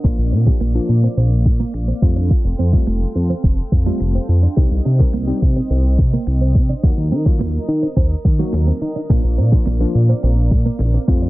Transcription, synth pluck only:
\new Staff \with { instrumentName = "Synth pluck" } { \time 4/4 \key bes \major \tempo 4 = 106 <f bes d' f'>8 r16 <f bes d' g'>8 <f bes d' f'>4. r8. <g a c' f'>8~ | <g a c' f'>8 r16 <g a c' f'>4. r8 <g a c' f'>4 r16 | <g c' ees' g'>8 r16 <g c' ees' bes'>8 <g c' ees' g'>4. r4 r16 | <ges bes ees' ges'>8 r16 <ges bes ees' f'>4. r8 <ges bes ees' ges'>4 r16 |
<f bes d' f'>8 r16 <f bes d' f'>8 <f bes d' f'>4. r8. <g a c' f'>8 | }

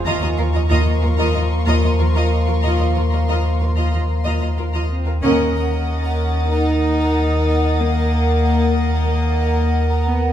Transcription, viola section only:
\new Staff \with { instrumentName = "Viola section" } { \time 4/4 \key ees \mixolydian \tempo 4 = 93 f'16 f'16 f'16 f'16 f'16 r16 f'16 f'16 f'16 r16 f'16 f'16 f'16 f'16 r16 f'16 | f'16 f'16 f'16 f'16 f'16 r16 f'16 f'16 f'16 r16 f'16 f'16 f'16 f'16 r16 f'16 | \key ees \minor bes'1~ | bes'1 | }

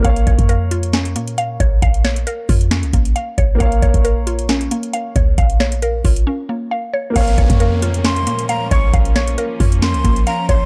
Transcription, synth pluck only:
\new Staff \with { instrumentName = "Synth pluck" } { \time 4/4 \key bes \minor \tempo 4 = 135 f''8 des''8 bes'8 f'8 des'8 bes8 f''8 des''8 | f''8 des''8 bes'8 f'8 des'8 bes8 f''8 des''8 | f''8 des''8 bes'8 f'8 des'8 bes8 f''8 des''8 | f''8 des''8 bes'8 f'8 des'8 bes8 f''8 des''8 |
f''8 des''8 bes'8 f'8 des'8 bes8 f''8 des''8 | f''8 des''8 bes'8 f'8 des'8 bes8 f''8 des''8 | }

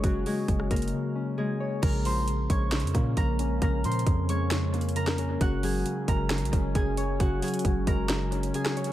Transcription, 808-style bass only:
\new Staff \with { instrumentName = "808-style bass" } { \clef bass \time 4/4 \key bes \minor \tempo 4 = 134 ges,,8 r8 ges,,8 ges,,8 r2 | bes,,4. bes,,8. f,16 bes,8 bes,,4 | bes,,8 bes,8 f,2. | ges,,4 r8 ges,,8. bes,,16 ges,,8 ges,,4 |
ges,,8 r8 ges,,8 ges,,4. r4 | }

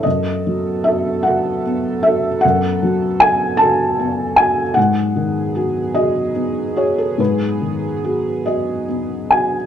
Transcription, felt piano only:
\new Staff \with { instrumentName = "Felt piano" } { \time 6/8 \key gis \phrygian \tempo 4. = 50 << { dis''4 e''8 fis''4 e''8 | fis''4 gis''8 a''4 gis''8 | fis''4. dis''4 cis''16 a'16 | b'4. dis''4 gis''8 | } \\ { fis,8 fis8 <fis' a'>8 <fis' a'>8 b8 <fis' a'>8 | fis,8 fis8 <fis' a'>8 <fis' a'>8 b8 <fis' a'>8 | gis,8 dis8 <fis' gis'>8 <fis' gis'>8 b8 <fis' gis'>8 | gis,8 dis8 <fis' gis'>8 <fis' gis'>8 b8 <fis' gis'>8 | } >> }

